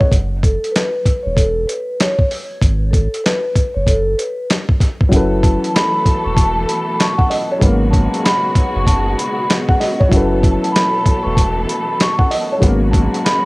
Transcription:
Already playing: D#5 F#5
0.00 C#5, kick
0.12 F#1, kick, closed hi-hat
0.43 A4, kick, closed hi-hat
0.64 closed hi-hat
0.72 B4, closed hi-hat
0.76 snare
1.06 kick, closed hi-hat
1.23 E1 C#5
1.35 E1 A4, kick, closed hi-hat
1.67 B4, closed hi-hat
2.00 C#5, snare, closed hi-hat
2.19 kick
2.31 open hi-hat
2.62 G#1, kick, closed hi-hat
2.91 A4, kick, closed hi-hat
3.14 closed hi-hat
3.24 B4, snare, closed hi-hat
3.56 kick, closed hi-hat
3.74 F#1 C#5
3.87 F#1 A4, kick, closed hi-hat
4.18 B4, closed hi-hat
4.50 snare, closed hi-hat
4.69 kick
4.80 kick, snare, closed hi-hat
5.01 kick
5.09 F#1 B2 E3 F#3 A3 C#4 E4 A4, kick, closed hi-hat
5.13 F#4 A4 B4
5.43 A5, kick, closed hi-hat
5.64 closed hi-hat
5.75 B5, snare, closed hi-hat
6.06 kick, closed hi-hat
6.24 E1 C#6
6.36 E1 A5, kick, closed hi-hat
6.69 B5, closed hi-hat
6.99 C#6, snare, closed hi-hat
7.18 F#5, kick
7.30 D#5, open hi-hat
7.51 C#5
7.58 G#1 G#2 C#3 F#3 G#3 B3 F#4, kick
7.62 A#3 C#4, closed hi-hat
7.91 A5, kick, closed hi-hat
8.14 closed hi-hat
8.24 B5, snare, closed hi-hat
8.56 kick, closed hi-hat
8.76 F#1 C#6
8.87 F#1 A5, kick, closed hi-hat
9.18 B5, closed hi-hat
9.50 snare, closed hi-hat
9.68 F#5, kick
9.80 D#5, snare, open hi-hat
9.99 C#5, kick
10.09 F#1 E3 F#3 A3 C#4 E4 A4, kick, closed hi-hat
10.13 F#4 A4 B4
10.43 A5, kick, closed hi-hat
10.64 closed hi-hat
10.72 B5, closed hi-hat
10.76 snare
11.06 kick, closed hi-hat
11.23 E1 C#6
11.35 E1 A5, kick, closed hi-hat
11.68 B5, closed hi-hat
12.00 C#6, snare, closed hi-hat
12.18 F#5, kick
12.31 D#5, open hi-hat
12.52 C#5
12.58 G#1 G#2 F#3 B3, kick
12.63 C#3 G#3 A#3 C#4 F#4, closed hi-hat
12.91 A5, kick, closed hi-hat
13.14 closed hi-hat
13.24 B5, snare, closed hi-hat

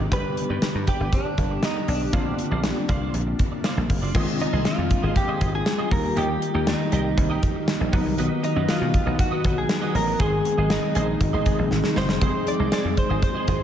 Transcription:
Already playing: D#3 C4 D4 G4
0.00 muted clean electric guitar stroke
0.10 G1 D3 G3 B3 G4 B4 D5, kick, closed hi-hat
0.37 muted clean electric guitar stroke, closed hi-hat
0.49 G2 G4 B4 D5
0.62 muted clean electric guitar stroke, muted slap bass stroke, snare, closed hi-hat
0.75 G2, muted clean electric guitar stroke
0.87 G4 B4 D5, kick, closed hi-hat
1.00 G1 G4 B4 D5
1.13 D4, muted clean electric guitar stroke, kick, closed hi-hat
1.25 muted clean electric guitar stroke
1.38 G1, kick, closed hi-hat
1.50 muted clean electric guitar stroke
1.63 D#4, muted clean electric guitar stroke, snare, closed hi-hat
1.76 muted clean electric guitar stroke
1.88 B1 D4, open hi-hat
2.01 muted clean electric guitar stroke
2.12 A#1 C3 D3 A#3 C4 D4 F4 C5 D5, kick, closed hi-hat
2.38 muted clean electric guitar stroke, closed hi-hat
2.51 A#1 F4 C5 D5
2.63 muted clean electric guitar stroke, snare, closed hi-hat
2.76 muted clean electric guitar stroke
2.89 C2 F4 C5 D5, kick, closed hi-hat
3.01 F4 C5 D5
3.14 A#1, muted clean electric guitar stroke, closed hi-hat
3.27 muted clean electric guitar stroke
3.39 kick, closed hi-hat
3.52 muted clean electric guitar stroke
3.64 F4 C5 D5, snare, closed hi-hat
3.77 A#1, muted clean electric guitar stroke
3.89 G1, muted clean electric guitar stroke, kick, open hi-hat
4.02 F#1 F4 C5 D5
4.14 F1 D#3 G#3 C4 F4 G#4 C5 D#5, kick, crash
4.40 D#4, muted clean electric guitar stroke, closed hi-hat
4.52 C2 G#4 C5 D#5
4.65 F4 G#4 C5 D#5, snare, closed hi-hat
4.78 F2, muted clean electric guitar stroke
4.90 muted clean electric guitar stroke, kick, closed hi-hat
5.03 G#1 G#4 C5 D#5
5.15 G4, muted clean electric guitar stroke, kick, closed hi-hat
5.28 G#4 C5 D#5
5.40 G#1 G#4 C5 D#5, kick, closed hi-hat
5.53 G#4, muted clean electric guitar stroke
5.66 muted clean electric guitar stroke, snare, closed hi-hat
5.78 G#4 C5 D#5
5.90 D#2 D#3 G3 A#3 G4 A#4, muted clean electric guitar stroke, kick, open hi-hat
6.04 muted clean electric guitar stroke
6.16 D#2 G4 A#4 D#5, closed hi-hat
6.29 muted clean electric guitar stroke
6.42 muted clean electric guitar stroke, closed hi-hat
6.54 D#2 G4 A#4 D#5
6.67 D#4, snare, closed hi-hat
6.80 muted clean electric guitar stroke
6.92 C2 G4 A#4 D#5, closed hi-hat
7.05 muted clean electric guitar stroke
7.17 C2, muted clean electric guitar stroke, kick, closed hi-hat
7.30 G4 A#4 D#5
7.43 kick, closed hi-hat
7.55 muted clean electric guitar stroke
7.68 snare, closed hi-hat
7.80 A#1, muted clean electric guitar stroke
7.92 B1 D#3 F#3 B3 D#4 F#4 B4 D#5, kick, open hi-hat
8.06 C2, muted clean electric guitar stroke
8.18 B1 F#4 B4 D#5, closed hi-hat
8.43 D#4, muted clean electric guitar stroke, closed hi-hat
8.56 F#2 F#4 B4 D#5
8.68 F4 F#4 B4 D#5, muted slap bass stroke, snare, closed hi-hat
8.81 B2, muted clean electric guitar stroke
8.94 muted clean electric guitar stroke, kick, closed hi-hat
9.06 B1 F#4 B4 D#5
9.19 F#4, muted clean electric guitar stroke, kick, closed hi-hat
9.31 F#4 B4 D#5
9.44 B1 F#4 B4 D#5, kick, closed hi-hat
9.56 G#4, muted clean electric guitar stroke
9.69 muted clean electric guitar stroke, snare, closed hi-hat
9.82 F#4 B4 D#5
9.94 A1 A#4, muted clean electric guitar stroke, open hi-hat
10.07 muted clean electric guitar stroke
10.19 G#1 C3 D#3 G#3 C4 D#4 G#4 C5 D#5, kick, closed hi-hat
10.32 muted clean electric guitar stroke
10.45 muted clean electric guitar stroke, closed hi-hat
10.57 G#1 G#4 C5 D#5
10.70 D#4, snare, closed hi-hat
10.83 muted clean electric guitar stroke
10.95 A#1 G#4 C5 D#5, closed hi-hat
11.08 muted clean electric guitar stroke
11.21 G#1, muted clean electric guitar stroke, kick, closed hi-hat
11.33 G#1 G#4 C5 D#5
11.46 D#3 G#3 C4 G#4 C5 D#5, kick, closed hi-hat
11.59 A#1, muted clean electric guitar stroke
11.71 G#1, snare
11.84 muted clean electric guitar stroke, snare
11.96 F#1 G#4 C5 D#5, snare
12.09 muted clean electric guitar stroke, snare
12.20 F1 D#3 F3 C4 D#4 F4 G#4 C5 D#5, kick, closed hi-hat
12.47 D5, muted clean electric guitar stroke, closed hi-hat
12.59 C2 G#4 C5 D#5
12.72 G#4 C5 D5 D#5, snare, closed hi-hat
12.84 F2, muted clean electric guitar stroke
12.97 C5, muted clean electric guitar stroke, kick, closed hi-hat
13.10 G#1 G#4 C5 D#5
13.22 C5, muted clean electric guitar stroke, kick, closed hi-hat
13.35 G#4 C5 D#5
13.47 G#1 G#4 C5 D#5, kick, closed hi-hat
13.60 muted clean electric guitar stroke

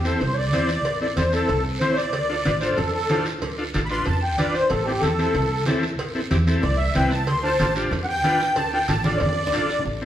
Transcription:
Already playing: E2
0.04 C4 E4 A4 C5, short guiro
0.20 C2 C5, cowbell, high conga, low conga, long guiro
0.33 C#5 D5
0.52 E2 C4 E4 C5, cowbell, high conga, short guiro
0.69 short guiro
0.85 A1, cowbell, high conga, long guiro
1.01 C4 E4 A4 D5
1.16 E2 C4 E4 A4 C5, cowbell, high conga, short guiro
1.32 C4 E4 A4, short guiro
1.49 C2, cowbell, high conga, low conga, long guiro
1.80 A1 C4 E4 C5, cowbell, high conga, short guiro
1.93 C#5
1.97 D5, short guiro
2.13 D2, cowbell, high conga, long guiro
2.29 D4 F4 A4
2.45 A1 D4 F4 B4, cowbell, high conga, short guiro
2.60 D4 F4 A4 C5, short guiro
2.77 F2 A4, cowbell, high conga, low conga, long guiro
2.93 A4
3.09 A1 D4 F4 C5, cowbell, high conga, low timbale, short guiro
3.25 short guiro
3.42 D2, cowbell, high conga, low conga, long guiro
3.58 D4 F4 A4
3.74 A1 D4 F4 A4, cowbell, high conga, short guiro
3.86 B5, short guiro
3.90 D4 F4 B4 C6
4.06 F2 A5, cowbell, high conga, low conga, long guiro
4.22 G5
4.38 A1 D4 F4 B4 D5, cowbell, high conga, short guiro
4.54 C5, short guiro
4.70 A1 A4, cowbell, high conga, long guiro
4.86 C4 E4 G4 A4
5.01 E2 C4 E4 A4, cowbell, high conga, short guiro
5.19 C4 E4 A4, short guiro
5.34 C2, cowbell, high conga, low conga, long guiro
5.66 E2 C4 E4 A4, cowbell, high conga, low timbale, short guiro
5.83 short guiro
5.99 A1, cowbell, high conga, long guiro
6.15 C4 E4 A4
6.31 E2 C4 E4 G4, cowbell, high conga, short guiro
6.47 C4 E4 A4, short guiro
6.62 C2 D5, cowbell, high conga, low conga, long guiro
6.78 E5
6.95 C2 C4 E4 B4 G5, cowbell, high conga, short guiro
7.11 A5, short guiro
7.27 D2 C6, cowbell, high conga, long guiro
7.43 D4 F4 A4 C5 A5
7.59 A1 D4 F4 A4, cowbell, high conga, short guiro
7.76 D4 F4 G4, short guiro
7.91 F2, cowbell, high conga, low conga, long guiro
8.04 F#5
8.09 G5
8.24 A1 D4 F4 B4, cowbell, high conga, short guiro
8.40 short guiro
8.56 D2 A5, cowbell, high conga, low conga, long guiro
8.73 D4 F4 A4 G5
8.88 A1 D4 F4 A4 A5, cowbell, high conga, short guiro
9.04 D4 F4 A4 D5, high conga, short guiro
9.17 C#5, cowbell
9.21 F2 D5, long guiro
9.26 high conga
9.47 low conga
9.53 A1 D4 F4 A4, cowbell, short guiro
9.58 low conga
9.69 short guiro
9.79 low conga
9.85 A1, high conga, long guiro
10.01 C4

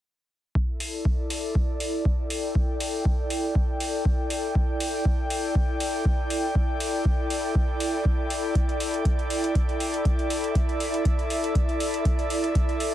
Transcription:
0.55 E4, kick
0.67 A4
0.80 open hi-hat
0.86 D5
1.05 kick
1.30 open hi-hat
1.55 kick
1.80 open hi-hat
2.05 kick
2.13 G5
2.30 open hi-hat
2.55 kick
2.80 open hi-hat
3.05 kick
3.30 open hi-hat
3.55 kick
3.80 open hi-hat
4.05 kick
4.30 open hi-hat
4.55 kick
4.80 open hi-hat
5.05 kick
5.30 open hi-hat
5.55 kick
5.80 open hi-hat
6.05 kick
6.30 open hi-hat
6.55 kick
6.80 open hi-hat
7.05 kick
7.30 open hi-hat
7.55 kick
7.80 open hi-hat
8.05 kick
8.30 open hi-hat
8.55 kick, closed hi-hat
8.69 closed hi-hat
8.80 open hi-hat
8.94 closed hi-hat
9.05 kick, closed hi-hat
9.19 closed hi-hat
9.30 open hi-hat
9.44 closed hi-hat
9.55 kick, closed hi-hat
9.69 closed hi-hat
9.80 open hi-hat
9.94 closed hi-hat
10.05 kick, closed hi-hat
10.12 E5
10.19 closed hi-hat
10.30 open hi-hat
10.44 closed hi-hat
10.55 kick, closed hi-hat
10.69 closed hi-hat
10.80 open hi-hat
10.94 closed hi-hat
11.05 kick, closed hi-hat
11.19 closed hi-hat
11.30 open hi-hat
11.44 closed hi-hat
11.55 kick, closed hi-hat
11.69 closed hi-hat
11.80 open hi-hat
11.94 closed hi-hat
12.05 kick, closed hi-hat
12.19 closed hi-hat
12.30 open hi-hat
12.44 closed hi-hat
12.55 kick, closed hi-hat
12.69 closed hi-hat
12.80 open hi-hat

